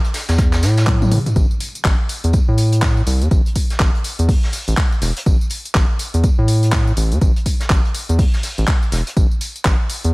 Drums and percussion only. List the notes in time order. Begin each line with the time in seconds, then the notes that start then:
0.04 closed hi-hat, tambourine
0.14 snare, open hi-hat, tambourine
0.29 snare, closed hi-hat, tambourine
0.38 kick, snare, closed hi-hat, tambourine
0.53 snare, clap, tambourine
0.63 snare, open hi-hat, tambourine
0.77 snare, closed hi-hat, tambourine
0.87 kick, clap, closed hi-hat, high tom, tambourine
1.02 high tom, tambourine
1.12 open hi-hat, mid tom, tambourine
1.26 closed hi-hat, mid tom, tambourine
1.36 kick, closed hi-hat, tambourine
1.51 tambourine
1.60 open hi-hat, tambourine
1.75 closed hi-hat, tambourine
1.84 kick, snare, clap, closed hi-hat, tambourine
2.09 open hi-hat, tambourine
2.24 closed hi-hat, tambourine
2.33 kick, closed hi-hat, tambourine
2.58 open hi-hat, tambourine
2.72 closed hi-hat, tambourine
2.82 kick, snare, clap, open hi-hat, tambourine
2.97 tambourine
3.07 open hi-hat, tambourine
3.22 closed hi-hat, tambourine
3.31 kick, closed hi-hat, tambourine
3.46 closed hi-hat, tambourine
3.55 kick, open hi-hat, tambourine
3.70 snare, closed hi-hat, tambourine
3.80 kick, snare, clap, closed hi-hat, tambourine
3.95 closed hi-hat
4.04 open hi-hat, tambourine
4.19 closed hi-hat, tambourine
4.29 kick, closed hi-hat, open hi-hat, tambourine
4.43 snare
4.53 snare, open hi-hat, tambourine
4.68 closed hi-hat, tambourine
4.77 kick, snare, clap, closed hi-hat, tambourine
4.92 tambourine
5.02 snare, open hi-hat, tambourine
5.17 closed hi-hat, tambourine
5.26 kick, closed hi-hat, tambourine
5.41 tambourine
5.50 open hi-hat, tambourine
5.65 closed hi-hat, tambourine
5.74 kick, snare, clap, closed hi-hat, tambourine
5.99 open hi-hat, tambourine
6.14 closed hi-hat, tambourine
6.24 kick, closed hi-hat, tambourine
6.48 open hi-hat, tambourine
6.63 closed hi-hat, tambourine
6.72 kick, snare, clap, open hi-hat, tambourine
6.87 tambourine
6.97 open hi-hat, tambourine
7.12 closed hi-hat, tambourine
7.21 kick, closed hi-hat, tambourine
7.36 closed hi-hat, tambourine
7.46 kick, open hi-hat, tambourine
7.60 snare, closed hi-hat, tambourine
7.70 kick, snare, clap, closed hi-hat, tambourine
7.85 closed hi-hat
7.95 open hi-hat, tambourine
8.09 closed hi-hat, tambourine
8.19 kick, closed hi-hat, open hi-hat, tambourine
8.34 snare, tambourine
8.43 snare, open hi-hat, tambourine
8.58 closed hi-hat, tambourine
8.67 kick, snare, clap, closed hi-hat, tambourine
8.83 tambourine
8.92 snare, open hi-hat, tambourine
9.07 closed hi-hat, tambourine
9.17 kick, closed hi-hat, tambourine
9.31 tambourine
9.41 open hi-hat, tambourine
9.56 closed hi-hat, tambourine
9.65 kick, snare, clap, closed hi-hat, tambourine
9.89 open hi-hat, tambourine
10.04 closed hi-hat, tambourine